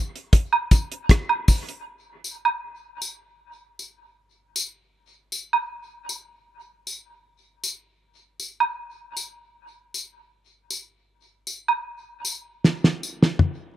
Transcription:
0.16 closed hi-hat soft
0.33 kick medium
0.33 closed hi-hat medium
0.53 high woodblock medium
0.71 kick medium
0.71 closed hi-hat medium
0.71 tambourine medium
0.92 closed hi-hat medium
1.09 kick loud
1.09 cross-stick medium
1.09 closed hi-hat medium
1.29 high woodblock medium
1.48 kick medium
1.48 open hi-hat medium
1.48 tambourine medium
1.69 closed hi-hat medium
2.24 tambourine medium
2.45 high woodblock medium
3.02 tambourine medium
3.79 tambourine soft
4.56 tambourine medium
5.32 tambourine medium
5.53 high woodblock medium
6.09 tambourine medium
6.87 tambourine soft
7.64 tambourine medium
8.40 tambourine medium
8.60 high woodblock medium
9.17 tambourine medium
9.94 tambourine soft
10.70 tambourine medium
11.47 tambourine medium
11.68 high woodblock medium
12.25 tambourine medium
12.64 snare medium
12.84 snare medium
13.03 tambourine soft
13.23 snare medium
13.39 mid tom medium

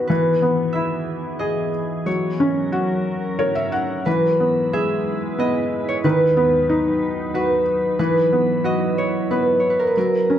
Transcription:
0.00 0.12 D#3 medium
0.00 0.12 B3 soft
0.00 2.02 B3 medium
0.00 0.12 D#4 medium
0.00 0.12 F#4 medium
0.07 2.04 E3 medium
0.07 2.02 E3 medium
0.07 2.04 G#4 medium
0.07 2.12 B4 medium
0.42 1.69 B3 medium
0.73 2.03 E4 medium
0.73 1.45 E5 medium
1.39 2.04 G#4 soft
1.39 3.18 D#5 medium
2.06 4.02 F#3 medium
2.06 4.04 F#3 medium
2.06 4.04 C#4 medium
2.06 4.04 A#4 medium
2.06 3.97 C#5 medium
2.40 3.69 C#4 medium
2.72 4.02 F#4 medium
3.39 4.04 A#4 soft
3.39 3.54 C#5 medium
3.55 3.71 E5 medium
3.72 4.04 F#5 medium
4.06 6.00 E3 medium
4.06 6.02 G#3 medium
4.06 6.02 E4 medium
4.06 6.04 B4 medium
4.06 9.92 B4 medium
4.40 5.37 B3 soft
4.73 6.00 G#4 medium
4.73 5.45 E5 medium
5.38 6.02 B3 soft
5.38 7.18 D#5 medium
5.89 5.95 C#5 medium
6.04 7.97 D#2 medium
6.04 7.95 D#3 medium
6.04 10.39 F#3 medium
6.04 7.97 D#4 medium
6.04 7.34 B4 medium
6.37 7.62 B3 medium
6.69 7.95 D#4 medium
7.34 7.97 F#4 medium
7.34 7.99 B4 medium
7.99 9.92 E3 medium
7.99 9.95 E4 medium
7.99 9.30 B4 medium
8.33 9.29 B3 soft
8.64 9.92 F#4 medium
8.64 10.39 D#5 medium
8.98 9.59 C#5 medium
9.31 9.94 B3 medium
9.31 9.70 B4 medium
9.60 10.39 C#5 medium
9.70 9.85 B4 medium
9.79 9.93 A#4 medium
9.87 10.04 B4 medium
9.97 10.39 F#3 soft
9.97 10.39 C#4 medium
9.97 10.39 A#4 medium
9.97 10.39 A#5 medium
10.30 10.39 C#4 soft

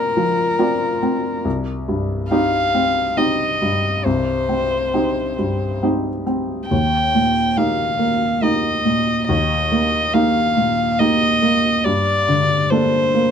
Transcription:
0.00 1.41 A#2 soft
0.00 0.17 F3 soft
0.00 0.59 C4 soft
0.00 0.13 F4 soft
0.00 1.45 A#4 medium
0.00 0.13 D5 soft
0.17 0.85 F3 soft
0.59 0.98 C4 soft
0.59 0.98 F4 soft
0.59 0.98 D5 soft
1.03 1.45 C4 soft
1.45 4.01 C2 soft
1.88 2.57 G2 soft
2.31 2.70 C4 soft
2.31 2.70 D#4 soft
2.31 2.71 G4 soft
2.31 3.19 F5 medium
2.75 3.16 C4 soft
3.17 3.57 C4 soft
3.17 3.57 D#4 soft
3.17 3.57 G4 soft
3.17 4.06 D#5 soft
3.62 4.32 G2 soft
4.05 6.67 C2 soft
4.05 5.82 C5 soft
4.49 4.92 C4 soft
4.94 5.34 C4 soft
4.94 5.34 D#4 soft
4.94 5.34 G4 soft
5.39 6.09 G2 soft
5.83 6.23 C4 soft
5.83 6.23 D#4 soft
5.83 6.23 G4 soft
6.27 6.71 C4 soft
6.69 9.25 D#2 soft
6.69 7.58 G5 soft
7.15 7.84 A#2 soft
7.57 7.96 A#3 soft
7.57 7.96 D#4 soft
7.57 7.97 G4 soft
7.57 8.44 F5 soft
7.99 8.41 A#3 soft
8.42 8.81 A#3 soft
8.42 8.82 D#4 soft
8.42 8.82 G4 soft
8.42 9.27 D#5 soft
8.85 9.54 A#2 soft
9.28 11.81 D#2 soft
9.28 10.15 D#5 soft
9.72 10.12 A#3 soft
10.14 10.53 A#3 soft
10.14 10.53 D#4 soft
10.14 10.53 G4 soft
10.14 11.00 F5 medium
10.57 11.25 A#2 soft
10.99 11.39 A#3 soft
10.99 11.39 D#4 soft
10.99 11.39 G4 soft
10.99 11.85 D#5 medium
11.42 11.85 A#3 soft
11.84 13.31 G2 soft
11.84 12.72 D5 medium
12.28 12.97 D3 soft
12.70 13.11 A#3 soft
12.70 13.11 D4 soft
12.70 13.11 A4 soft
12.70 13.31 C5 medium
13.15 13.31 A#3 soft

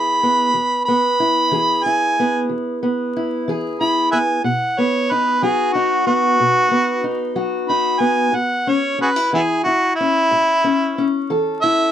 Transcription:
0.00 0.16 E3 medium
0.00 0.23 B3 medium
0.00 0.50 E4 medium
0.00 0.51 G#4 medium
0.00 0.82 B5 medium
0.23 0.88 B3 medium
0.54 1.12 E2 medium
0.85 2.19 B3 medium
0.85 1.85 B5 medium
1.20 1.84 E4 medium
1.51 2.09 E3 medium
1.51 3.47 G#4 medium
1.83 3.14 E4 medium
1.83 2.46 G#5 loud
2.20 2.81 B3 medium
2.49 3.07 E2 medium
2.83 4.12 B3 medium
3.17 3.79 E4 medium
3.48 4.05 E3 medium
3.48 4.41 G#4 medium
3.80 4.40 E4 medium
3.80 4.11 B5 medium
4.12 4.40 B3 medium
4.12 4.19 B4 medium
4.12 4.18 E5 medium
4.12 4.43 G#5 medium
4.44 5.02 B2 medium
4.44 4.80 F#5 medium
4.78 6.05 B3 medium
4.78 5.13 C#5 medium
5.11 5.74 D#4 medium
5.11 5.44 B4 medium
5.42 6.00 F#3 medium
5.42 7.34 F#4 medium
5.42 5.74 G#4 medium
5.73 7.03 D#4 medium
5.73 6.05 F#4 medium
6.07 6.70 B3 medium
6.07 7.33 F#4 loud
6.40 6.98 B2 medium
6.71 7.99 B3 medium
7.04 7.68 D#4 medium
7.36 7.95 F#3 medium
7.36 8.34 F#4 medium
7.69 8.30 D#4 medium
7.69 8.02 B5 medium
8.00 8.29 B3 medium
8.00 8.36 G#5 medium
8.32 8.92 A2 medium
8.32 8.71 F#5 medium
8.67 8.97 C#4 medium
8.67 9.00 C#5 medium
8.98 9.16 C#4 medium
8.98 9.10 F#4 medium
8.98 9.08 G#4 medium
8.98 9.32 B4 medium
9.16 9.32 E4 soft
9.33 9.91 E3 medium
9.33 9.41 B3 medium
9.33 9.65 E4 medium
9.33 9.42 E4 medium
9.33 9.63 G#4 medium
9.64 11.61 E4 medium
9.64 9.95 F#4 medium
9.96 11.23 E4 loud
10.00 10.63 C#4 medium
10.31 10.89 A2 medium
10.64 10.96 C#4 medium
10.98 11.92 C#4 medium
11.30 11.88 E3 medium
11.30 11.92 A4 medium
11.61 11.92 E4 medium
11.61 11.92 E5 loud

